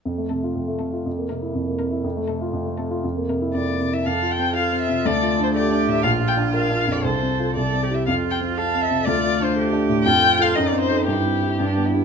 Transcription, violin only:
0.29 0.49 A4 soft
0.79 0.98 A4 soft
1.29 1.48 A#4 soft
1.79 1.97 A#4 soft
2.28 2.47 A4 soft
2.78 2.96 A4 soft
3.30 3.48 A#4 soft
3.54 3.95 D5 soft
3.94 4.08 E5 soft
4.06 4.33 F5 medium
4.31 4.55 G5 medium
4.55 4.80 F5 soft
4.81 5.07 E5 medium
5.05 5.42 D5 medium
5.44 5.48 C5 medium
5.54 5.90 D5 soft
5.91 6.02 E5 medium
6.03 6.11 F5 medium
6.28 6.36 G5 medium
6.54 6.93 F5 medium
6.92 7.06 D5 soft
7.04 7.55 C5 soft
7.56 7.96 D5 soft
7.94 8.05 E5 soft
8.06 8.14 F5 medium
8.31 8.39 G5 medium
8.56 8.83 F5 soft
8.82 9.07 E5 medium
9.05 9.45 D5 medium
9.43 9.56 C5 medium
10.04 10.43 G5 medium
10.42 10.57 F5 medium
10.55 10.70 D#5 medium
10.68 10.80 D5 medium
10.81 11.06 C5 medium
11.07 11.83 G4 soft

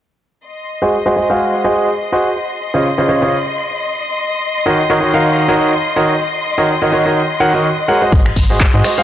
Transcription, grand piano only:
0.82 0.95 G#3 medium
0.82 0.95 F#4 medium
0.82 0.95 G#4 medium
0.82 0.95 C5 medium
0.82 0.95 D#5 medium
1.06 1.14 G#3 medium
1.06 1.14 F#4 medium
1.06 1.14 G#4 medium
1.06 1.14 C5 medium
1.06 1.14 D#5 loud
1.16 1.28 G#3 medium
1.16 1.28 F#4 medium
1.16 1.28 G#4 medium
1.16 1.28 C5 medium
1.16 1.28 D#5 medium
1.30 1.62 G#3 medium
1.30 1.62 F#4 medium
1.30 1.62 G#4 medium
1.30 1.62 C5 medium
1.30 1.62 F5 medium
1.64 1.87 G#3 medium
1.64 1.87 F#4 medium
1.64 1.87 G#4 medium
1.64 1.87 C5 medium
1.64 1.87 D#5 loud
2.12 2.28 F#4 medium
2.12 2.28 G#4 medium
2.12 2.28 C5 medium
2.12 2.28 D#5 medium
2.74 2.87 C#3 medium
2.74 2.87 F4 medium
2.74 2.87 C5 medium
2.74 2.87 C#5 medium
2.74 2.87 D#5 medium
2.98 3.07 C#3 medium
2.98 3.07 F4 medium
2.98 3.07 C5 medium
2.98 3.07 C#5 medium
2.98 3.07 D#5 medium
3.08 3.20 C#3 medium
3.08 3.20 F4 medium
3.08 3.20 C5 medium
3.08 3.20 C#5 medium
3.08 3.20 D#5 medium
3.22 3.35 C#3 medium
3.22 3.35 F4 medium
3.22 3.35 C5 medium
3.22 3.35 C#5 medium
3.22 3.35 D#5 medium
4.66 4.79 D#3 medium
4.66 4.79 F#4 medium
4.66 4.79 A#4 medium
4.66 4.79 C#5 medium
4.66 4.79 D#5 medium
4.90 4.98 D#3 medium
4.90 4.98 F#4 medium
4.90 4.98 A#4 medium
4.90 4.98 C#5 medium
4.90 4.98 D#5 loud
5.00 5.12 D#3 medium
5.00 5.12 F#4 medium
5.00 5.12 A#4 medium
5.00 5.12 C#5 medium
5.00 5.12 D#5 medium
5.14 5.46 D#3 medium
5.14 5.46 F#4 medium
5.14 5.46 A#4 medium
5.14 5.46 C#5 medium
5.14 5.46 F5 medium
5.48 5.71 D#3 medium
5.48 5.71 F#4 medium
5.48 5.71 A#4 medium
5.48 5.71 C#5 medium
5.48 5.71 D#5 medium
5.96 6.12 D#3 medium
5.96 6.12 F#4 medium
5.96 6.12 A#4 medium
5.96 6.12 C#5 medium
5.96 6.12 D#5 medium
6.58 6.71 D#3 medium
6.58 6.71 F#4 medium
6.58 6.71 A#4 medium
6.58 6.71 C#5 medium
6.58 6.71 D#5 medium
6.82 6.91 D#3 medium
6.82 6.91 F#4 medium
6.82 6.91 A#4 medium
6.82 6.91 C#5 medium
6.82 6.91 D#5 medium
6.92 7.04 D#3 medium
6.92 7.04 F#4 medium
6.92 7.04 A#4 medium
6.92 7.04 C#5 medium
6.92 7.04 D#5 medium
7.06 7.19 D#3 medium
7.06 7.19 F#4 medium
7.06 7.19 A#4 medium
7.06 7.19 C#5 medium
7.06 7.19 D#5 medium
7.40 7.52 D#3 medium
7.40 7.52 F#4 medium
7.40 7.52 A#4 medium
7.40 7.52 C#5 medium
7.40 7.52 F#5 loud
7.54 7.67 D#3 medium
7.54 7.67 F#4 medium
7.54 7.67 A#4 medium
7.54 7.67 C#5 medium
7.54 7.67 D#5 medium
7.88 8.00 G#3 medium
7.88 8.00 F#4 medium
7.88 8.00 A#4 medium
7.88 8.00 C#5 medium
7.88 8.00 F#5 medium
8.02 8.25 G#3 medium
8.02 8.25 F#4 medium
8.02 8.25 G#4 medium
8.02 8.25 C5 medium
8.02 8.25 D#5 medium
8.50 8.63 G#3 medium
8.50 8.63 F#4 medium
8.50 8.63 G#4 medium
8.50 8.63 C5 medium
8.50 8.63 D#5 medium
8.74 8.82 G#3 medium
8.74 8.82 F#4 medium
8.74 8.82 G#4 medium
8.74 8.82 C5 medium
8.74 8.82 D#5 loud
8.84 8.96 G#3 medium
8.84 8.96 F#4 medium
8.84 8.96 G#4 medium
8.84 8.96 C5 medium
8.84 8.96 D#5 medium
8.98 9.03 G#3 medium
8.98 9.03 F#4 medium
8.98 9.03 G#4 medium
8.98 9.03 C5 medium
8.98 9.03 F5 medium

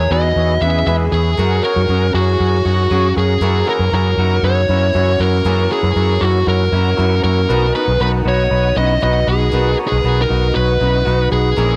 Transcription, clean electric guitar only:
0.00 0.10 E4 medium
0.00 0.11 A#4 medium
0.11 0.59 D#4 medium
0.11 0.59 F#4 loud
0.62 0.88 C#4 medium
0.62 0.87 E4 medium
0.87 1.36 E4 medium
0.87 1.35 G#4 loud
1.38 1.74 F#4 medium
1.38 1.74 A#4 loud
1.76 1.89 D#4 medium
1.76 1.87 F#4 medium
1.88 2.15 C#4 medium
1.88 2.14 F#4 medium
2.14 2.63 E4 medium
2.14 2.62 G#4 medium
2.65 2.91 D#4 medium
2.65 2.90 F#4 medium
2.91 3.39 C#4 medium
2.91 3.39 G#4 medium
3.42 3.78 F#4 medium
3.42 3.78 A#4 loud
3.80 3.93 G#4 medium
3.80 3.92 B4 medium
3.92 4.17 F#4 medium
3.92 4.18 A#4 medium
4.18 4.67 D#4 medium
4.18 4.66 F#4 loud
4.69 4.94 C#4 medium
4.69 4.95 E4 medium
4.95 5.43 C#4 medium
4.95 5.43 F#4 medium
5.46 5.82 F#4 medium
5.46 5.82 A#4 loud
5.83 5.96 G#4 medium
5.83 5.95 B4 medium
5.96 6.20 F#4 medium
5.96 6.22 A#4 medium
6.21 6.70 D#4 medium
6.21 6.69 F#4 medium
6.72 6.98 C#4 medium
6.72 6.98 E4 medium
6.98 7.47 C#4 medium
6.98 7.46 F#4 medium
7.49 7.86 F#4 medium
7.49 7.85 A#4 loud
7.87 8.00 G#4 medium
7.87 8.00 B4 medium
8.00 8.24 F#4 medium
8.00 8.26 A#4 medium
8.25 8.74 D#4 medium
8.25 8.73 F#4 medium
8.77 9.03 C#4 medium
8.77 9.02 E4 medium
9.02 9.51 D#4 medium
9.02 9.50 F#4 medium
9.54 9.90 F#4 medium
9.54 9.89 A#4 loud
9.91 10.04 G#4 medium
9.91 10.03 B4 medium
10.04 10.28 F#4 medium
10.04 10.29 A#4 medium
10.29 10.78 D#4 medium
10.29 10.77 F#4 medium
10.80 11.06 C#4 medium
10.80 11.06 E4 medium
11.05 11.54 D#4 medium
11.05 11.53 F#4 medium
11.57 11.76 E4 medium
11.57 11.76 A#4 loud

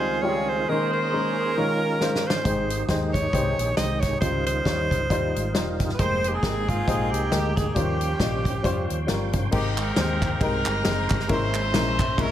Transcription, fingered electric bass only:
2.45 2.83 G#1 medium
2.88 3.26 D#2 medium
3.33 3.55 C2 medium
3.58 3.75 A#1 medium
3.77 4.15 C2 medium
4.22 4.59 C#2 medium
4.65 4.87 D#2 medium
4.91 5.07 C#2 medium
5.10 5.32 D#2 medium
5.36 5.54 G#1 medium
5.54 5.92 E1 medium
5.99 6.37 F1 medium
6.43 6.81 G#1 medium
6.87 7.13 A#1 medium
7.13 7.29 C2 medium
7.32 7.69 D2 medium
7.76 8.13 D#2 medium
8.20 8.57 A#1 medium
8.64 8.86 F2 medium
8.90 9.06 D#2 medium
9.09 9.46 G1 medium
9.53 9.90 G#1 loud
9.97 10.35 D#2 loud
10.41 10.62 C2 loud
10.66 10.82 G1 loud
10.86 11.07 F#1 loud
11.11 11.27 G1 medium
11.30 11.74 G#1 loud
11.74 12.12 A#1 medium
12.18 12.31 C2 loud

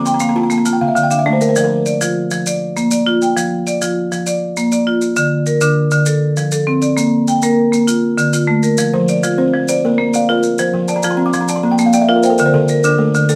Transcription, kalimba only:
0.00 0.21 A#3 medium
0.00 0.12 D6 medium
0.07 0.20 C6 medium
0.14 0.27 A#5 medium
0.21 0.35 C6 medium
0.29 0.42 A#5 medium
0.36 0.66 F4 medium
0.36 0.50 A5 medium
0.43 0.56 A#5 medium
0.51 0.64 A5 medium
0.58 0.72 A#5 medium
0.65 0.79 A5 medium
0.73 0.87 G5 medium
0.81 1.11 D3 medium
0.81 0.94 F5 medium
0.88 1.02 E5 medium
0.95 1.09 F5 medium
1.03 1.17 G5 medium
1.11 1.25 F5 medium
1.19 1.32 E5 medium
1.26 1.56 D4 medium
1.26 1.40 D5 medium
1.33 1.47 C5 medium
1.41 1.55 A#4 medium
1.49 1.63 C5 medium
1.57 1.70 D5 medium
1.64 1.78 A#4 medium
8.93 9.23 F3 medium
8.93 9.37 C5 medium
9.38 9.68 C4 medium
9.38 9.68 C5 medium
9.69 9.99 C5 medium
9.85 10.14 A#3 medium
9.85 10.28 A#4 medium
10.15 10.59 F5 medium
10.29 10.59 A#4 medium
10.29 10.74 D5 medium
10.59 10.89 C5 medium
10.74 11.03 F3 medium
10.88 11.02 A5 medium
10.96 11.10 A#5 medium
11.03 11.17 A5 medium
11.11 11.25 C6 medium
11.17 11.48 C4 medium
11.17 11.32 A#5 medium
11.26 11.40 D6 medium
11.33 11.47 C6 medium
11.41 11.55 A#5 medium
11.49 11.62 A5 medium
11.56 11.70 C6 medium
11.63 11.93 A#3 medium
11.63 11.77 A#5 medium
11.71 11.85 G5 medium
11.78 11.92 A5 medium
11.86 12.00 F5 medium
11.94 12.07 G5 medium
12.01 12.15 E5 medium
12.09 12.15 A#4 medium
12.09 12.22 F5 medium
12.16 12.30 A#4 medium
12.23 12.37 C5 medium
12.30 12.44 A4 medium
12.39 12.52 A#4 medium
12.46 12.60 C5 medium
12.54 12.83 D3 medium
12.54 12.97 A4 medium
12.84 13.28 D4 medium
12.98 13.28 A3 medium
12.98 13.28 A4 medium
13.29 13.35 A4 medium

